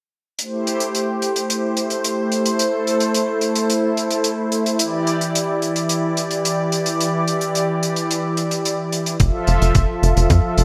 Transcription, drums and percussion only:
0, 0, Header, 1, 2, 480
1, 0, Start_track
1, 0, Key_signature, 0, "minor"
1, 0, Tempo, 550459
1, 343, Time_signature, 4, 2, 24, 8
1, 9281, End_track
2, 0, Start_track
2, 0, Title_t, "Drums"
2, 337, Note_on_c, 9, 42, 97
2, 424, Note_off_c, 9, 42, 0
2, 585, Note_on_c, 9, 42, 76
2, 672, Note_off_c, 9, 42, 0
2, 701, Note_on_c, 9, 42, 67
2, 788, Note_off_c, 9, 42, 0
2, 826, Note_on_c, 9, 42, 92
2, 913, Note_off_c, 9, 42, 0
2, 1065, Note_on_c, 9, 42, 72
2, 1152, Note_off_c, 9, 42, 0
2, 1185, Note_on_c, 9, 42, 83
2, 1272, Note_off_c, 9, 42, 0
2, 1307, Note_on_c, 9, 42, 108
2, 1395, Note_off_c, 9, 42, 0
2, 1541, Note_on_c, 9, 42, 86
2, 1628, Note_off_c, 9, 42, 0
2, 1659, Note_on_c, 9, 42, 75
2, 1746, Note_off_c, 9, 42, 0
2, 1782, Note_on_c, 9, 42, 101
2, 1869, Note_off_c, 9, 42, 0
2, 2021, Note_on_c, 9, 42, 73
2, 2108, Note_off_c, 9, 42, 0
2, 2141, Note_on_c, 9, 42, 80
2, 2228, Note_off_c, 9, 42, 0
2, 2261, Note_on_c, 9, 42, 98
2, 2348, Note_off_c, 9, 42, 0
2, 2505, Note_on_c, 9, 42, 71
2, 2592, Note_off_c, 9, 42, 0
2, 2619, Note_on_c, 9, 42, 71
2, 2706, Note_off_c, 9, 42, 0
2, 2742, Note_on_c, 9, 42, 94
2, 2829, Note_off_c, 9, 42, 0
2, 2976, Note_on_c, 9, 42, 75
2, 3063, Note_off_c, 9, 42, 0
2, 3100, Note_on_c, 9, 42, 82
2, 3187, Note_off_c, 9, 42, 0
2, 3224, Note_on_c, 9, 42, 97
2, 3311, Note_off_c, 9, 42, 0
2, 3465, Note_on_c, 9, 42, 79
2, 3552, Note_off_c, 9, 42, 0
2, 3580, Note_on_c, 9, 42, 79
2, 3667, Note_off_c, 9, 42, 0
2, 3697, Note_on_c, 9, 42, 98
2, 3785, Note_off_c, 9, 42, 0
2, 3940, Note_on_c, 9, 42, 67
2, 4027, Note_off_c, 9, 42, 0
2, 4065, Note_on_c, 9, 42, 78
2, 4152, Note_off_c, 9, 42, 0
2, 4179, Note_on_c, 9, 42, 108
2, 4266, Note_off_c, 9, 42, 0
2, 4421, Note_on_c, 9, 42, 75
2, 4508, Note_off_c, 9, 42, 0
2, 4545, Note_on_c, 9, 42, 69
2, 4632, Note_off_c, 9, 42, 0
2, 4668, Note_on_c, 9, 42, 107
2, 4755, Note_off_c, 9, 42, 0
2, 4902, Note_on_c, 9, 42, 70
2, 4989, Note_off_c, 9, 42, 0
2, 5022, Note_on_c, 9, 42, 78
2, 5109, Note_off_c, 9, 42, 0
2, 5139, Note_on_c, 9, 42, 107
2, 5226, Note_off_c, 9, 42, 0
2, 5381, Note_on_c, 9, 42, 83
2, 5468, Note_off_c, 9, 42, 0
2, 5499, Note_on_c, 9, 42, 72
2, 5586, Note_off_c, 9, 42, 0
2, 5626, Note_on_c, 9, 42, 103
2, 5713, Note_off_c, 9, 42, 0
2, 5861, Note_on_c, 9, 42, 78
2, 5949, Note_off_c, 9, 42, 0
2, 5981, Note_on_c, 9, 42, 79
2, 6069, Note_off_c, 9, 42, 0
2, 6109, Note_on_c, 9, 42, 91
2, 6196, Note_off_c, 9, 42, 0
2, 6344, Note_on_c, 9, 42, 77
2, 6432, Note_off_c, 9, 42, 0
2, 6462, Note_on_c, 9, 42, 64
2, 6549, Note_off_c, 9, 42, 0
2, 6584, Note_on_c, 9, 42, 86
2, 6672, Note_off_c, 9, 42, 0
2, 6826, Note_on_c, 9, 42, 67
2, 6913, Note_off_c, 9, 42, 0
2, 6944, Note_on_c, 9, 42, 71
2, 7031, Note_off_c, 9, 42, 0
2, 7069, Note_on_c, 9, 42, 91
2, 7156, Note_off_c, 9, 42, 0
2, 7300, Note_on_c, 9, 42, 78
2, 7387, Note_off_c, 9, 42, 0
2, 7422, Note_on_c, 9, 42, 76
2, 7509, Note_off_c, 9, 42, 0
2, 7546, Note_on_c, 9, 42, 84
2, 7633, Note_off_c, 9, 42, 0
2, 7783, Note_on_c, 9, 42, 78
2, 7870, Note_off_c, 9, 42, 0
2, 7903, Note_on_c, 9, 42, 70
2, 7990, Note_off_c, 9, 42, 0
2, 8020, Note_on_c, 9, 42, 84
2, 8023, Note_on_c, 9, 36, 114
2, 8107, Note_off_c, 9, 42, 0
2, 8110, Note_off_c, 9, 36, 0
2, 8260, Note_on_c, 9, 42, 72
2, 8347, Note_off_c, 9, 42, 0
2, 8386, Note_on_c, 9, 42, 61
2, 8473, Note_off_c, 9, 42, 0
2, 8500, Note_on_c, 9, 42, 85
2, 8503, Note_on_c, 9, 36, 119
2, 8587, Note_off_c, 9, 42, 0
2, 8590, Note_off_c, 9, 36, 0
2, 8748, Note_on_c, 9, 42, 69
2, 8835, Note_off_c, 9, 42, 0
2, 8866, Note_on_c, 9, 42, 77
2, 8953, Note_off_c, 9, 42, 0
2, 8980, Note_on_c, 9, 42, 84
2, 8983, Note_on_c, 9, 36, 111
2, 9068, Note_off_c, 9, 42, 0
2, 9070, Note_off_c, 9, 36, 0
2, 9222, Note_on_c, 9, 42, 84
2, 9281, Note_off_c, 9, 42, 0
2, 9281, End_track
0, 0, End_of_file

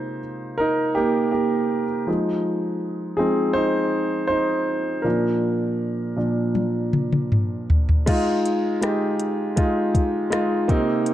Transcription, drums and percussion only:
0, 0, Header, 1, 2, 480
1, 0, Start_track
1, 0, Tempo, 742574
1, 1342, Time_signature, 4, 2, 24, 8
1, 3747, Tempo, 752823
1, 7153, End_track
2, 0, Start_track
2, 0, Title_t, "Drums"
2, 4227, Note_on_c, 9, 48, 46
2, 4291, Note_off_c, 9, 48, 0
2, 4471, Note_on_c, 9, 47, 51
2, 4535, Note_off_c, 9, 47, 0
2, 4594, Note_on_c, 9, 47, 51
2, 4658, Note_off_c, 9, 47, 0
2, 4717, Note_on_c, 9, 45, 66
2, 4781, Note_off_c, 9, 45, 0
2, 4959, Note_on_c, 9, 43, 75
2, 5023, Note_off_c, 9, 43, 0
2, 5080, Note_on_c, 9, 43, 65
2, 5144, Note_off_c, 9, 43, 0
2, 5199, Note_on_c, 9, 42, 79
2, 5199, Note_on_c, 9, 49, 75
2, 5200, Note_on_c, 9, 36, 85
2, 5263, Note_off_c, 9, 42, 0
2, 5263, Note_off_c, 9, 49, 0
2, 5264, Note_off_c, 9, 36, 0
2, 5442, Note_on_c, 9, 42, 56
2, 5506, Note_off_c, 9, 42, 0
2, 5678, Note_on_c, 9, 42, 65
2, 5684, Note_on_c, 9, 37, 83
2, 5742, Note_off_c, 9, 42, 0
2, 5748, Note_off_c, 9, 37, 0
2, 5914, Note_on_c, 9, 42, 51
2, 5978, Note_off_c, 9, 42, 0
2, 6154, Note_on_c, 9, 42, 80
2, 6156, Note_on_c, 9, 36, 77
2, 6218, Note_off_c, 9, 42, 0
2, 6219, Note_off_c, 9, 36, 0
2, 6393, Note_on_c, 9, 36, 66
2, 6394, Note_on_c, 9, 42, 54
2, 6457, Note_off_c, 9, 36, 0
2, 6458, Note_off_c, 9, 42, 0
2, 6632, Note_on_c, 9, 42, 64
2, 6636, Note_on_c, 9, 37, 89
2, 6696, Note_off_c, 9, 42, 0
2, 6700, Note_off_c, 9, 37, 0
2, 6868, Note_on_c, 9, 36, 81
2, 6868, Note_on_c, 9, 42, 42
2, 6932, Note_off_c, 9, 36, 0
2, 6932, Note_off_c, 9, 42, 0
2, 7105, Note_on_c, 9, 42, 73
2, 7153, Note_off_c, 9, 42, 0
2, 7153, End_track
0, 0, End_of_file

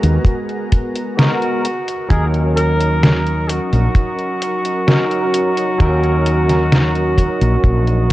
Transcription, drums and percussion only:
0, 0, Header, 1, 2, 480
1, 0, Start_track
1, 0, Tempo, 923077
1, 1095, Time_signature, 4, 2, 24, 8
1, 4227, End_track
2, 0, Start_track
2, 0, Title_t, "Drums"
2, 17, Note_on_c, 9, 42, 48
2, 69, Note_off_c, 9, 42, 0
2, 129, Note_on_c, 9, 36, 107
2, 136, Note_on_c, 9, 42, 48
2, 181, Note_off_c, 9, 36, 0
2, 188, Note_off_c, 9, 42, 0
2, 257, Note_on_c, 9, 42, 23
2, 309, Note_off_c, 9, 42, 0
2, 376, Note_on_c, 9, 42, 88
2, 378, Note_on_c, 9, 36, 106
2, 428, Note_off_c, 9, 42, 0
2, 430, Note_off_c, 9, 36, 0
2, 498, Note_on_c, 9, 42, 50
2, 550, Note_off_c, 9, 42, 0
2, 618, Note_on_c, 9, 38, 112
2, 618, Note_on_c, 9, 42, 52
2, 670, Note_off_c, 9, 38, 0
2, 670, Note_off_c, 9, 42, 0
2, 739, Note_on_c, 9, 42, 24
2, 791, Note_off_c, 9, 42, 0
2, 858, Note_on_c, 9, 42, 84
2, 910, Note_off_c, 9, 42, 0
2, 978, Note_on_c, 9, 42, 49
2, 1030, Note_off_c, 9, 42, 0
2, 1095, Note_on_c, 9, 36, 112
2, 1098, Note_on_c, 9, 42, 53
2, 1147, Note_off_c, 9, 36, 0
2, 1150, Note_off_c, 9, 42, 0
2, 1218, Note_on_c, 9, 42, 27
2, 1270, Note_off_c, 9, 42, 0
2, 1338, Note_on_c, 9, 42, 85
2, 1390, Note_off_c, 9, 42, 0
2, 1458, Note_on_c, 9, 42, 52
2, 1510, Note_off_c, 9, 42, 0
2, 1576, Note_on_c, 9, 38, 112
2, 1576, Note_on_c, 9, 42, 51
2, 1628, Note_off_c, 9, 38, 0
2, 1628, Note_off_c, 9, 42, 0
2, 1698, Note_on_c, 9, 42, 26
2, 1750, Note_off_c, 9, 42, 0
2, 1817, Note_on_c, 9, 42, 91
2, 1869, Note_off_c, 9, 42, 0
2, 1938, Note_on_c, 9, 42, 50
2, 1990, Note_off_c, 9, 42, 0
2, 2052, Note_on_c, 9, 36, 111
2, 2056, Note_on_c, 9, 42, 53
2, 2104, Note_off_c, 9, 36, 0
2, 2108, Note_off_c, 9, 42, 0
2, 2176, Note_on_c, 9, 42, 24
2, 2228, Note_off_c, 9, 42, 0
2, 2297, Note_on_c, 9, 42, 91
2, 2349, Note_off_c, 9, 42, 0
2, 2417, Note_on_c, 9, 42, 51
2, 2469, Note_off_c, 9, 42, 0
2, 2536, Note_on_c, 9, 38, 113
2, 2536, Note_on_c, 9, 42, 53
2, 2588, Note_off_c, 9, 38, 0
2, 2588, Note_off_c, 9, 42, 0
2, 2658, Note_on_c, 9, 42, 25
2, 2710, Note_off_c, 9, 42, 0
2, 2777, Note_on_c, 9, 42, 89
2, 2829, Note_off_c, 9, 42, 0
2, 2898, Note_on_c, 9, 42, 50
2, 2950, Note_off_c, 9, 42, 0
2, 3016, Note_on_c, 9, 36, 106
2, 3017, Note_on_c, 9, 42, 54
2, 3068, Note_off_c, 9, 36, 0
2, 3069, Note_off_c, 9, 42, 0
2, 3138, Note_on_c, 9, 42, 27
2, 3190, Note_off_c, 9, 42, 0
2, 3256, Note_on_c, 9, 42, 92
2, 3308, Note_off_c, 9, 42, 0
2, 3377, Note_on_c, 9, 38, 35
2, 3377, Note_on_c, 9, 42, 52
2, 3429, Note_off_c, 9, 38, 0
2, 3429, Note_off_c, 9, 42, 0
2, 3496, Note_on_c, 9, 38, 114
2, 3496, Note_on_c, 9, 42, 53
2, 3548, Note_off_c, 9, 38, 0
2, 3548, Note_off_c, 9, 42, 0
2, 3616, Note_on_c, 9, 42, 26
2, 3668, Note_off_c, 9, 42, 0
2, 3732, Note_on_c, 9, 36, 61
2, 3735, Note_on_c, 9, 42, 89
2, 3784, Note_off_c, 9, 36, 0
2, 3787, Note_off_c, 9, 42, 0
2, 3856, Note_on_c, 9, 42, 50
2, 3908, Note_off_c, 9, 42, 0
2, 3972, Note_on_c, 9, 36, 114
2, 3975, Note_on_c, 9, 42, 52
2, 4024, Note_off_c, 9, 36, 0
2, 4027, Note_off_c, 9, 42, 0
2, 4095, Note_on_c, 9, 42, 26
2, 4147, Note_off_c, 9, 42, 0
2, 4227, End_track
0, 0, End_of_file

